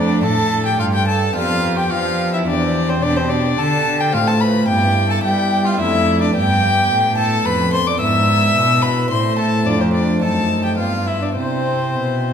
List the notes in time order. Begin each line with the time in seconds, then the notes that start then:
Already playing: F2 A3 D4 A4 D5
0.23 A2 A4 A5
0.65 G4 G5
0.79 G2 F4 F5
0.93 G4 G5
1.07 A4 A5
1.32 F2 B3 D4 F4 G4 F5
1.36 F2
1.77 G4 G5
1.90 F3 F4 F5
2.33 E4 E5
2.44 E2 C4 D4 G4 D5
2.89 C4 C5
3.00 B2 D4 G4 D5
3.17 C4 C5
3.29 D4 D5
3.58 D3 A4 A5
4.00 G4 G5
4.09 A3 C4 F4 F5
4.14 A2 F4
4.27 A4 A5
4.40 B4 B5
4.64 B3 E4 G5
4.68 G2 G4
5.09 A4 A5
5.23 G3 G4 G5
5.64 F4 F5
5.74 A3 D4
5.79 F2 E4 E5
6.21 D4 D5
6.31 B3 D4 G5
6.35 G2 G4
6.91 A2
7.17 A4 A5
7.45 F2 B4 B5
7.73 C5 C6
7.87 D5 D6
7.97 B3 D4 E4 E5 E6
8.01 G#2
8.56 B2
8.82 B4 B5
9.07 A3 C4 E4 C5 C6
9.11 A2
9.38 A4 A5
9.62 A3 C4 D4 F4 D5
9.66 F2
9.80 C4 C5
9.93 D4 D5
10.18 A3 C4 D#4 A4 A5
10.22 F#2
10.63 G4 G5
10.77 G2 B3 D4 F4 F5
11.06 E4 E5
11.21 D4 D5
11.33 C3 C4 E4 C5
11.94 B2